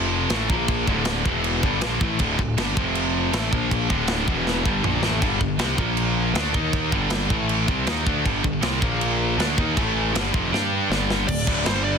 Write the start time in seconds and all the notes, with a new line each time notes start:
Already playing: F1 F2 C3 F3
0.30 A1 A2 E3 A3, snare, crash
0.49 A#1 A#2 F3 A#3, kick
0.68 kick, crash
0.87 D1 D2 A2 D3, kick
1.05 snare, crash
1.25 E1 E2 B2 E3, kick
1.44 crash
1.63 G1 G2 D3 G3, kick
1.81 A#1 A#2 F3 A#3, snare, crash
2.01 A1 A2 E3 A3, kick
2.19 D1 D2 A2 D3, kick, crash
2.39 D1 D2 A2, kick
2.57 G1 G2 D3 G3, snare, crash
2.76 F1 F2 C3 F3, kick
2.95 crash
3.33 A1 A2 E3 A3, snare, crash
3.52 A#1 A#2 F3 A#3, kick
3.71 kick, crash
3.89 D1 D2 A2 D3, kick
4.07 snare, crash
4.27 E1 E2 B2 E3, kick
4.47 snare
4.65 G1 G2 D3 G3, kick
4.83 A#1 A#2 F3 A#3, mid tom
5.02 A1 A2 E3 A3, snare
5.21 G1 G2 D3 G3, kick, crash
5.40 G1 G2 D3, kick
5.58 C2 C3 G3 C4, snare, crash
5.78 A#1 A#2 F3 A#3, kick
5.97 crash
6.34 D2 D3 A3 D4, snare, crash
6.54 D#2 D#3 A#3 D#4, kick
6.73 kick, crash
6.92 G1 G2 D3 G3, kick
7.10 snare, crash
7.30 A1 A2 E3 A3, kick
7.49 crash
7.68 C2 C3 G3 C4, kick
7.87 D#2 D#3 A#3 D#4, snare, crash
8.05 D2 D3 A3 D4, kick
8.25 G1 G2 D3 G3, kick, crash
8.43 G1 G2 D3, kick
8.62 C2 C3 G3 C4, snare, crash
8.80 A#1 A#2 F3 A#3, kick
9.01 crash
9.38 D2 D3 A3 D4, snare, crash
9.58 D#2 D#3 A#3 D#4, kick
9.77 A1 A2 E3 A3, kick, crash
10.15 G1 G2 D3 G3, snare, crash
10.34 F1 F2 C3 F3, kick
10.52 G2 G3 D4 G4, snare
10.89 G1 G2 D3 G3, snare
11.10 snare
11.27 D1 D2 A2 D5, kick, crash
11.47 D1 D2 A2 D3, kick
11.66 G1 G2 D3 G3 C5, snare, crash
11.84 D5